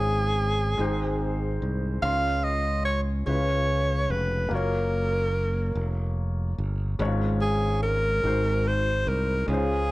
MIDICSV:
0, 0, Header, 1, 4, 480
1, 0, Start_track
1, 0, Key_signature, -5, "major"
1, 0, Tempo, 827586
1, 1181, Time_signature, 6, 3, 24, 8
1, 5751, End_track
2, 0, Start_track
2, 0, Title_t, "Alto saxophone"
2, 0, Program_c, 0, 65
2, 0, Note_on_c, 0, 68, 88
2, 939, Note_off_c, 0, 68, 0
2, 1175, Note_on_c, 0, 77, 101
2, 1414, Note_on_c, 0, 75, 83
2, 1423, Note_off_c, 0, 77, 0
2, 1650, Note_off_c, 0, 75, 0
2, 1653, Note_on_c, 0, 73, 74
2, 1746, Note_off_c, 0, 73, 0
2, 1894, Note_on_c, 0, 73, 87
2, 2384, Note_on_c, 0, 71, 77
2, 2393, Note_off_c, 0, 73, 0
2, 2631, Note_on_c, 0, 70, 88
2, 2640, Note_off_c, 0, 71, 0
2, 3586, Note_off_c, 0, 70, 0
2, 4299, Note_on_c, 0, 68, 74
2, 4524, Note_off_c, 0, 68, 0
2, 4540, Note_on_c, 0, 70, 94
2, 5032, Note_on_c, 0, 72, 89
2, 5041, Note_off_c, 0, 70, 0
2, 5269, Note_on_c, 0, 70, 79
2, 5277, Note_off_c, 0, 72, 0
2, 5499, Note_off_c, 0, 70, 0
2, 5503, Note_on_c, 0, 68, 93
2, 5751, Note_off_c, 0, 68, 0
2, 5751, End_track
3, 0, Start_track
3, 0, Title_t, "Grand piano"
3, 0, Program_c, 1, 0
3, 0, Control_c, 1, 64, 127
3, 0, Note_on_c, 1, 44, 55
3, 0, Note_on_c, 1, 56, 53
3, 0, Note_on_c, 1, 61, 49
3, 0, Note_on_c, 1, 65, 49
3, 0, Note_on_c, 1, 73, 59
3, 438, Note_off_c, 1, 44, 0
3, 440, Note_off_c, 1, 56, 0
3, 449, Note_on_c, 1, 56, 68
3, 456, Note_on_c, 1, 60, 54
3, 460, Note_off_c, 1, 61, 0
3, 462, Note_on_c, 1, 44, 59
3, 463, Note_off_c, 1, 65, 0
3, 463, Note_on_c, 1, 63, 51
3, 467, Note_off_c, 1, 73, 0
3, 467, Note_on_c, 1, 72, 65
3, 469, Control_c, 1, 64, 0
3, 572, Control_c, 1, 64, 127
3, 1158, Note_off_c, 1, 44, 0
3, 1166, Note_off_c, 1, 56, 0
3, 1174, Note_on_c, 1, 56, 52
3, 1176, Note_off_c, 1, 63, 0
3, 1178, Note_off_c, 1, 60, 0
3, 1178, Note_on_c, 1, 61, 48
3, 1180, Note_on_c, 1, 49, 54
3, 1184, Note_off_c, 1, 72, 0
3, 1185, Note_on_c, 1, 63, 37
3, 1187, Control_c, 1, 64, 0
3, 1188, Note_on_c, 1, 84, 61
3, 1220, Note_off_c, 1, 63, 0
3, 1222, Note_on_c, 1, 65, 50
3, 1299, Control_c, 1, 64, 127
3, 1877, Note_off_c, 1, 49, 0
3, 1882, Note_off_c, 1, 56, 0
3, 1890, Note_off_c, 1, 61, 0
3, 1891, Note_on_c, 1, 56, 53
3, 1899, Note_on_c, 1, 61, 42
3, 1902, Note_on_c, 1, 49, 48
3, 1902, Note_on_c, 1, 64, 37
3, 1904, Note_off_c, 1, 84, 0
3, 1908, Note_on_c, 1, 71, 53
3, 1909, Control_c, 1, 64, 0
3, 1921, Note_off_c, 1, 65, 0
3, 1939, Note_off_c, 1, 64, 0
3, 1939, Note_on_c, 1, 65, 50
3, 2001, Control_c, 1, 64, 127
3, 2598, Note_off_c, 1, 49, 0
3, 2602, Note_on_c, 1, 58, 54
3, 2607, Note_off_c, 1, 65, 0
3, 2616, Note_off_c, 1, 56, 0
3, 2616, Note_on_c, 1, 65, 57
3, 2620, Note_off_c, 1, 61, 0
3, 2624, Note_off_c, 1, 71, 0
3, 2625, Note_on_c, 1, 66, 45
3, 2628, Control_c, 1, 64, 0
3, 2639, Note_on_c, 1, 73, 61
3, 2728, Control_c, 1, 64, 127
3, 4030, Note_off_c, 1, 58, 0
3, 4037, Note_off_c, 1, 65, 0
3, 4041, Note_off_c, 1, 66, 0
3, 4048, Note_off_c, 1, 73, 0
3, 4054, Note_on_c, 1, 56, 63
3, 4058, Note_on_c, 1, 61, 65
3, 4063, Note_on_c, 1, 44, 68
3, 4065, Note_on_c, 1, 63, 44
3, 4068, Control_c, 1, 64, 0
3, 4070, Note_on_c, 1, 73, 74
3, 4101, Note_off_c, 1, 63, 0
3, 4104, Note_on_c, 1, 65, 55
3, 4171, Control_c, 1, 64, 127
3, 4761, Note_off_c, 1, 44, 0
3, 4766, Note_off_c, 1, 56, 0
3, 4775, Note_on_c, 1, 56, 47
3, 4779, Note_on_c, 1, 63, 45
3, 4781, Note_off_c, 1, 61, 0
3, 4784, Note_on_c, 1, 44, 51
3, 4786, Note_on_c, 1, 66, 46
3, 4788, Note_off_c, 1, 73, 0
3, 4792, Control_c, 1, 64, 0
3, 4793, Note_on_c, 1, 72, 55
3, 4804, Note_off_c, 1, 65, 0
3, 4881, Control_c, 1, 64, 127
3, 5479, Note_off_c, 1, 56, 0
3, 5482, Note_off_c, 1, 44, 0
3, 5488, Note_on_c, 1, 56, 58
3, 5502, Note_on_c, 1, 61, 53
3, 5503, Note_off_c, 1, 63, 0
3, 5507, Note_off_c, 1, 66, 0
3, 5507, Note_on_c, 1, 49, 55
3, 5510, Note_off_c, 1, 72, 0
3, 5513, Control_c, 1, 64, 0
3, 5515, Note_on_c, 1, 63, 36
3, 5525, Note_on_c, 1, 72, 59
3, 5548, Note_off_c, 1, 63, 0
3, 5551, Note_on_c, 1, 65, 56
3, 5628, Control_c, 1, 64, 127
3, 5751, Note_off_c, 1, 49, 0
3, 5751, Note_off_c, 1, 56, 0
3, 5751, Note_off_c, 1, 61, 0
3, 5751, Note_off_c, 1, 65, 0
3, 5751, Note_off_c, 1, 72, 0
3, 5751, End_track
4, 0, Start_track
4, 0, Title_t, "Fingered electric bass"
4, 0, Program_c, 2, 33
4, 0, Note_on_c, 2, 32, 84
4, 437, Note_off_c, 2, 32, 0
4, 458, Note_on_c, 2, 32, 77
4, 916, Note_off_c, 2, 32, 0
4, 940, Note_on_c, 2, 36, 67
4, 1161, Note_off_c, 2, 36, 0
4, 1174, Note_on_c, 2, 37, 89
4, 1874, Note_off_c, 2, 37, 0
4, 1896, Note_on_c, 2, 37, 80
4, 2355, Note_off_c, 2, 37, 0
4, 2379, Note_on_c, 2, 29, 77
4, 2600, Note_off_c, 2, 29, 0
4, 2615, Note_on_c, 2, 30, 82
4, 3315, Note_off_c, 2, 30, 0
4, 3337, Note_on_c, 2, 29, 80
4, 3797, Note_off_c, 2, 29, 0
4, 3819, Note_on_c, 2, 31, 69
4, 4041, Note_off_c, 2, 31, 0
4, 4056, Note_on_c, 2, 32, 99
4, 4757, Note_off_c, 2, 32, 0
4, 4777, Note_on_c, 2, 32, 83
4, 5238, Note_off_c, 2, 32, 0
4, 5261, Note_on_c, 2, 36, 82
4, 5484, Note_off_c, 2, 36, 0
4, 5497, Note_on_c, 2, 37, 97
4, 5751, Note_off_c, 2, 37, 0
4, 5751, End_track
0, 0, End_of_file